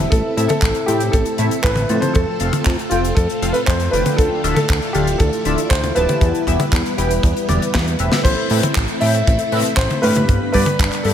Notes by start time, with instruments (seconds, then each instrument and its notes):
Already playing: analog polysynth A2 C4 E4 A4 E5, string machine E4
0.10 analog synth bass A1, string machine A3 C4 A4, grand piano A4, kick, closed hi-hat
0.37 analog synth bass A2, analog polysynth A2 C4 E4 A4 E5, closed hi-hat
0.48 grand piano A4, closed hi-hat, high tom
0.62 analog synth bass A1, kick, clap, closed hi-hat
0.75 closed hi-hat
0.86 analog polysynth A2 C4 E4 A4 G5, analog synth bass A2, grand piano G4, closed hi-hat
1.00 closed hi-hat
1.12 analog synth bass A1, grand piano A4, kick, closed hi-hat
1.26 closed hi-hat
1.38 analog synth bass A2, analog polysynth A2 C4 E4 A4 E5, closed hi-hat
1.51 closed hi-hat
1.63 analog synth bass A1, grand piano B4, kick, clap, closed hi-hat
1.76 closed hi-hat, high tom
1.89 analog synth bass A2, analog polysynth F3 C4 F4 A4 A5, closed hi-hat
2.01 grand piano C5, closed hi-hat, high tom
2.14 analog synth bass F2, string machine F4, grand piano A4, kick, closed hi-hat
2.40 analog synth bass F1, analog polysynth F3 C4 F4 A4 F5, closed hi-hat
2.53 closed hi-hat, high tom
2.66 analog synth bass F2, kick, clap, closed hi-hat
2.79 closed hi-hat
2.90 analog synth bass F1, analog polysynth F3 C4 F4 A4 G5, grand piano F4, closed hi-hat
3.05 closed hi-hat
3.15 analog synth bass F2, grand piano A4, kick, closed hi-hat
3.30 closed hi-hat
3.42 analog synth bass F1, analog polysynth F3 C4 F4 A4 F5, closed hi-hat
3.53 grand piano B4, closed hi-hat
3.66 analog synth bass F2, grand piano C5, kick, clap, closed hi-hat
3.80 closed hi-hat
3.91 analog synth bass F1, analog polysynth D3 D4 F4 A4 G5, grand piano B4, closed hi-hat
4.06 closed hi-hat, high tom
4.17 analog synth bass D2, string machine E4 D5, grand piano A4, kick, closed hi-hat
4.44 analog synth bass D1, analog polysynth D3 D4 F4 A4 E5, closed hi-hat
4.55 grand piano A4, closed hi-hat, high tom
4.68 analog synth bass D2, kick, clap, closed hi-hat
4.82 closed hi-hat
4.93 analog synth bass D1, analog polysynth D3 D4 F4 A4 F5, grand piano G4, closed hi-hat
5.07 closed hi-hat
5.18 analog synth bass D2, grand piano A4, kick, closed hi-hat
5.33 closed hi-hat
5.45 analog synth bass D1, analog polysynth D3 D4 F4 A4 E5, closed hi-hat
5.58 closed hi-hat
5.69 analog synth bass D2, grand piano C5, kick, clap, closed hi-hat
5.84 closed hi-hat, high tom
5.95 analog synth bass D1, analog polysynth E3 B3 E4 G4 A5, grand piano B4, closed hi-hat
6.09 closed hi-hat, high tom
6.21 analog synth bass E2, string machine G3 B3 B4, kick, closed hi-hat
6.35 closed hi-hat
6.47 analog synth bass E1, analog polysynth E3 B3 E4 G4 E5, kick, closed hi-hat
6.60 closed hi-hat, high tom
6.72 analog synth bass E2, kick, clap, closed hi-hat
6.86 closed hi-hat
6.98 analog synth bass E1, analog polysynth E3 B3 E4 G4 G5, closed hi-hat
7.11 closed hi-hat
7.23 analog synth bass E2, kick, closed hi-hat
7.37 closed hi-hat
7.49 analog synth bass E1, analog polysynth E3 B3 E4 G4 D5, closed hi-hat, high tom
7.62 closed hi-hat
7.74 analog synth bass E2, kick, snare, clap, closed hi-hat
7.88 closed hi-hat
7.99 analog synth bass E1, analog polysynth A2 C4 A4 B4 E5, closed hi-hat
8.12 snare, closed hi-hat, high tom
8.24 analog synth bass A1, string machine A3 C4 E4 B5, grand piano C5, kick, closed hi-hat, crash
8.50 analog synth bass A2, analog polysynth A2 C4 A4 B4 E5, open hi-hat
8.63 closed hi-hat, high tom
8.75 analog synth bass A1, kick, clap, closed hi-hat
8.88 closed hi-hat
9.00 analog synth bass A2, analog polysynth A2 C4 A4 B4 G5, grand piano E5, open hi-hat
9.14 closed hi-hat
9.27 analog synth bass A1, kick, closed hi-hat
9.39 closed hi-hat
9.52 analog synth bass A2, analog polysynth A2 C4 A4 B4 E5, open hi-hat
9.65 closed hi-hat
9.76 analog synth bass A1, grand piano C5, kick, clap, closed hi-hat
9.90 closed hi-hat, high tom
10.02 analog polysynth G2 B3 D4 G4 F5, analog synth bass A2, grand piano B4, open hi-hat
10.15 closed hi-hat, high tom
10.29 analog synth bass G1, string machine G3 B3 D4, kick, closed hi-hat
10.53 analog polysynth G2 B3 D4 G4 D5, analog synth bass G2, grand piano B4, kick, open hi-hat
10.66 closed hi-hat, high tom
10.79 analog synth bass G1, kick, clap, closed hi-hat
10.92 clap, closed hi-hat
11.03 analog polysynth G2 B3 D4 G4 E5, analog synth bass G2, grand piano A4, open hi-hat